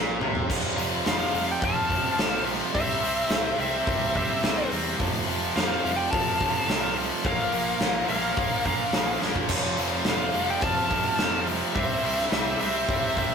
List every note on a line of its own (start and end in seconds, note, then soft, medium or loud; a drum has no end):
0.00 0.19 A#1 loud
0.00 0.20 A#2 loud
0.21 0.48 C2 medium
0.21 0.49 C3 medium
0.21 mid tom loud
0.35 floor tom medium
0.49 0.71 F1 medium
0.49 0.75 F2 medium
0.49 0.76 C3 loud
0.49 0.76 F3 loud
0.49 kick loud
0.49 crash loud
0.77 0.98 F1 medium
0.77 1.04 F2 medium
0.77 1.04 C3 medium
0.77 1.05 F3 medium
0.77 open hi-hat medium
1.05 1.27 F1 loud
1.05 1.31 F2 medium
1.05 1.31 C3 medium
1.05 1.32 F3 medium
1.05 1.46 C5 medium
1.05 1.50 F5 medium
1.05 snare loud
1.05 open hi-hat medium
1.32 1.55 F1 medium
1.32 1.59 F2 loud
1.32 1.60 C3 loud
1.32 1.60 F3 loud
1.32 open hi-hat medium
1.51 1.63 D5 medium
1.51 1.64 G5 medium
1.60 2.04 F1 medium
1.60 1.87 F2 medium
1.60 1.88 C3 medium
1.60 1.88 F3 loud
1.60 kick loud
1.60 open hi-hat medium
1.65 2.44 F5 medium
1.65 2.44 A5 loud
1.88 2.16 F2 loud
1.88 2.17 C3 loud
1.88 2.17 F3 loud
1.88 kick medium
1.88 open hi-hat medium
2.17 2.60 A#1 loud
2.17 2.44 F2 medium
2.17 2.44 C3 medium
2.17 2.45 F3 medium
2.17 snare loud
2.17 open hi-hat loud
2.45 2.72 F2 medium
2.45 2.72 C3 medium
2.45 2.73 F3 loud
2.45 open hi-hat medium
2.73 2.96 C2 medium
2.73 3.00 C3 loud
2.73 3.01 G3 loud
2.73 3.02 C4 loud
2.73 3.55 C5 loud
2.73 3.59 E5 loud
2.73 kick loud
2.73 open hi-hat medium
3.01 3.23 C2 loud
3.01 3.28 C3 medium
3.01 3.28 G3 medium
3.01 3.30 C4 medium
3.01 open hi-hat medium
3.29 3.51 C2 loud
3.29 3.56 C3 medium
3.29 3.57 G3 medium
3.29 3.58 C4 medium
3.29 snare loud
3.29 open hi-hat medium
3.58 3.79 C2 loud
3.58 3.84 C3 loud
3.58 3.84 G3 loud
3.58 3.85 C4 loud
3.58 4.16 E5 medium
3.58 open hi-hat medium
3.62 4.13 C5 loud
3.85 4.29 C2 loud
3.85 4.13 C3 medium
3.85 4.13 G3 medium
3.85 4.14 C4 loud
3.85 kick loud
3.85 open hi-hat medium
4.14 4.41 C3 medium
4.14 4.42 G3 loud
4.14 4.42 C4 loud
4.14 4.68 C5 medium
4.14 4.68 E5 loud
4.14 kick medium
4.14 open hi-hat medium
4.42 4.64 C2 medium
4.42 4.68 C3 medium
4.42 4.69 G3 loud
4.42 4.70 C4 medium
4.42 snare loud
4.42 open hi-hat medium
4.70 4.93 E2 medium
4.70 4.96 C3 medium
4.70 4.97 G3 medium
4.70 4.98 C4 loud
4.70 open hi-hat medium
4.97 5.21 F1 loud
4.97 5.26 F2 loud
4.97 5.26 C3 loud
4.97 5.27 F3 loud
4.97 kick loud
4.97 open hi-hat medium
5.27 5.49 F1 medium
5.27 5.53 F2 medium
5.27 5.53 C3 medium
5.27 5.55 F3 loud
5.27 open hi-hat medium
5.54 5.77 F1 medium
5.54 5.81 F2 medium
5.54 5.82 C3 medium
5.54 5.83 F3 loud
5.54 5.95 C5 medium
5.54 6.00 F5 medium
5.54 snare loud
5.54 open hi-hat medium
5.83 6.05 F1 medium
5.83 6.11 F2 loud
5.83 6.11 C3 loud
5.83 6.13 F3 loud
5.83 open hi-hat medium
5.96 6.13 D5 medium
5.96 6.11 G5 loud
6.11 6.54 F1 loud
6.11 6.38 F2 medium
6.11 6.39 C3 medium
6.11 6.40 F3 medium
6.11 6.97 F5 medium
6.11 6.96 A5 loud
6.11 kick loud
6.11 open hi-hat loud
6.40 6.66 F2 loud
6.40 6.67 C3 loud
6.40 6.68 F3 loud
6.40 kick loud
6.40 open hi-hat medium
6.67 7.10 C2 loud
6.67 6.93 F2 medium
6.67 6.94 C3 medium
6.67 6.95 F3 medium
6.67 snare loud
6.67 open hi-hat loud
6.94 7.22 F2 medium
6.94 7.22 C3 medium
6.94 7.23 F3 loud
6.94 open hi-hat medium
7.23 7.46 A#1 medium
7.23 7.50 A#2 loud
7.23 7.52 F3 loud
7.23 7.51 A#3 loud
7.23 8.08 F5 loud
7.23 kick loud
7.23 open hi-hat medium
7.27 8.06 A#4 medium
7.51 7.73 A#1 medium
7.51 7.79 A#2 medium
7.51 7.80 F3 medium
7.51 7.80 A#3 loud
7.51 open hi-hat medium
7.80 8.02 A#1 loud
7.80 8.07 A#2 medium
7.80 8.09 F3 medium
7.80 8.08 A#3 medium
7.80 snare loud
7.80 open hi-hat medium
8.08 8.30 A#1 medium
8.08 8.35 A#2 loud
8.08 8.36 F3 loud
8.08 8.36 A#3 loud
8.08 8.62 A#4 loud
8.08 8.65 F5 loud
8.08 open hi-hat medium
8.36 8.79 A#1 medium
8.36 8.63 A#2 medium
8.36 8.64 F3 medium
8.36 8.65 A#3 loud
8.36 kick loud
8.36 open hi-hat medium
8.64 8.93 A#2 loud
8.64 8.93 F3 loud
8.64 8.93 A#3 loud
8.64 9.17 A#4 medium
8.64 9.18 F5 medium
8.64 kick medium
8.64 open hi-hat medium
8.93 9.15 A#1 loud
8.93 9.20 A#2 medium
8.93 9.20 F3 medium
8.93 9.21 A#3 medium
8.93 snare loud
8.93 open hi-hat medium
9.21 9.43 A#1 medium
9.21 9.48 A#2 medium
9.21 9.48 F3 loud
9.21 9.48 A#3 medium
9.21 snare medium
9.36 kick loud
9.49 9.71 F1 medium
9.49 9.76 F2 medium
9.49 9.76 C3 loud
9.49 9.77 F3 loud
9.49 kick loud
9.49 crash loud
9.49 splash medium
9.77 9.99 F1 medium
9.77 10.05 F2 medium
9.77 10.05 C3 medium
9.77 10.06 F3 loud
9.77 open hi-hat medium
10.05 10.27 F1 medium
10.05 10.33 F2 medium
10.05 10.33 C3 medium
10.05 10.34 F3 medium
10.05 snare loud
10.05 open hi-hat medium
10.09 10.47 C5 medium
10.09 10.51 F5 medium
10.34 10.55 F1 medium
10.34 10.61 F2 loud
10.34 10.61 C3 loud
10.34 10.61 F3 loud
10.34 open hi-hat medium
10.50 10.63 D5 medium
10.50 10.63 G5 loud
10.61 11.05 F1 medium
10.61 10.89 F2 medium
10.61 10.90 C3 medium
10.61 10.90 F3 medium
10.61 11.44 A5 loud
10.61 kick loud
10.61 open hi-hat medium
10.66 11.45 F5 medium
10.90 11.16 F2 loud
10.90 11.17 C3 loud
10.90 11.18 F3 loud
10.90 kick loud
10.90 open hi-hat medium
11.18 11.61 F1 medium
11.18 11.45 F2 medium
11.18 11.45 C3 medium
11.18 11.46 F3 medium
11.18 snare loud
11.18 open hi-hat loud
11.46 11.74 F2 medium
11.46 11.73 C3 loud
11.46 11.74 F3 loud
11.46 open hi-hat medium
11.74 11.97 C2 medium
11.74 12.02 C3 loud
11.74 12.03 G3 loud
11.74 12.04 C4 loud
11.74 12.32 E5 loud
11.74 kick loud
11.74 open hi-hat medium
11.78 12.29 C5 medium
12.03 12.26 C2 medium
12.03 12.30 C3 medium
12.03 12.30 G3 loud
12.03 12.32 C4 loud
12.03 open hi-hat medium
12.18 snare soft
12.31 12.54 C2 medium
12.31 12.59 C3 medium
12.31 12.59 G3 medium
12.31 12.60 C4 medium
12.31 12.59 C5 medium
12.31 12.59 E5 loud
12.31 snare loud
12.31 open hi-hat medium
12.60 12.83 C2 medium
12.60 12.86 C3 medium
12.60 12.86 G3 loud
12.60 12.86 C4 loud
12.60 13.14 C5 loud
12.60 13.17 E5 medium
12.60 open hi-hat medium
12.87 13.31 C2 loud
12.87 13.15 C3 medium
12.87 13.15 G3 medium
12.87 13.15 C4 loud
12.87 kick loud
12.87 open hi-hat medium
13.16 13.35 C3 loud
13.16 13.35 G3 loud
13.16 13.35 C4 loud
13.16 13.35 C5 medium
13.16 13.35 E5 medium
13.16 kick medium
13.16 open hi-hat medium